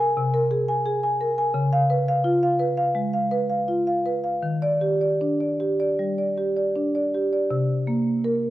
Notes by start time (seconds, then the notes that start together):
Already playing: C3 A#4
0.00 G#5
0.17 C3
0.34 A#4
0.51 G#4
0.68 G#5
0.86 G#4
1.03 G#5
1.21 A#4
1.38 G#5
1.54 C#3
1.73 F5
1.90 B4
2.08 F5
2.24 F4
2.43 F5
2.60 B4
2.77 F5
2.95 G#3
3.13 F5
3.31 B4
3.50 F5
3.68 F4
3.87 F5
4.06 B4
4.24 F5
4.42 D#3
4.62 D5
4.81 G4
5.01 D5
5.21 D4
5.40 D5
5.60 G4
5.80 D5
5.99 G3
6.18 D5
6.38 G4
6.57 D5
6.76 D4
6.95 D5
7.14 G4
7.33 D5
7.51 C3
7.87 A#3
8.24 A#4